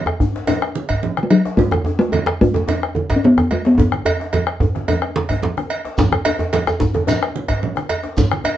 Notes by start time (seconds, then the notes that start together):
Already playing: A3
0.06 bombo rim, djembe tone, high conga
0.20 bombo rim, bombo low, high conga, djembe bass
0.36 djembe slap
0.47 cowbell, djembe slap, djembe tone, low conga
0.62 bombo rim, djembe slap
0.75 high conga
0.89 bombo low, cowbell, djembe slap, djembe bass
1.03 djembe slap, low conga
1.17 bombo rim, high conga
1.23 A3
1.30 F#3, cowbell, djembe slap
1.45 djembe slap
1.57 A3, bombo low, djembe bass, low conga
1.71 bombo rim, djembe tone, high conga
1.85 djembe tone
1.99 A3, djembe slap
2.12 cowbell, djembe tone, high conga, low conga
2.26 bombo rim, djembe slap, high conga
2.41 A3, bombo rim, bombo low, djembe bass
2.54 djembe slap, djembe tone, high conga
2.68 cowbell, djembe tone, low conga
2.83 bombo rim, djembe slap
2.95 djembe tone, high conga
3.10 bombo low, cowbell, djembe slap, djembe bass
3.16 C#4
3.24 B3, djembe slap, low conga
3.38 bombo rim, djembe tone, high conga
3.51 A3, cowbell, djembe slap, djembe tone
3.65 B3, djembe slap
3.78 bombo low, djembe tone, djembe bass, low conga
3.92 bombo rim, djembe slap, high conga
4.05 cowbell, djembe slap, djembe tone, high conga
4.20 bombo rim, djembe slap
4.33 cowbell, djembe tone, high conga, low conga
4.47 bombo rim
4.60 bombo rim, bombo low, djembe slap, djembe tone, high conga, djembe bass
4.75 bombo rim, djembe slap, high conga
4.88 cowbell, djembe slap, djembe tone, high conga, low conga
5.02 bombo rim
5.16 bombo rim, djembe slap, high conga
5.29 bombo rim, bombo low, cowbell, djembe slap, high conga, djembe bass
5.42 djembe slap, high conga, low conga
5.57 bombo rim, djembe slap, high conga, djembe tone
5.70 cowbell, high conga
5.85 bombo rim, djembe slap
5.98 bombo low, djembe slap, djembe bass, low conga, shekere
6.12 bombo rim, djembe slap, djembe tone, high conga
6.25 cowbell, djembe slap, djembe tone
6.39 djembe slap, djembe tone
6.53 cowbell, djembe slap, high conga, low conga
6.67 bombo rim, djembe tone, high conga, shekere
6.80 bombo rim, bombo low, djembe slap, high conga, djembe bass, shekere
6.94 djembe slap, djembe tone, high conga
7.07 cowbell, djembe tone, low conga, shekere
7.22 bombo rim, djembe slap
7.36 high conga
7.48 bombo low, cowbell, djembe slap, djembe bass
7.62 djembe slap, low conga
7.75 bombo rim, djembe tone, high conga
7.88 cowbell, djembe slap
7.90 djembe slap
8.03 djembe slap
8.17 bombo low, djembe tone, djembe bass, low conga, shekere
8.31 bombo rim, djembe slap, high conga
8.44 cowbell, djembe tone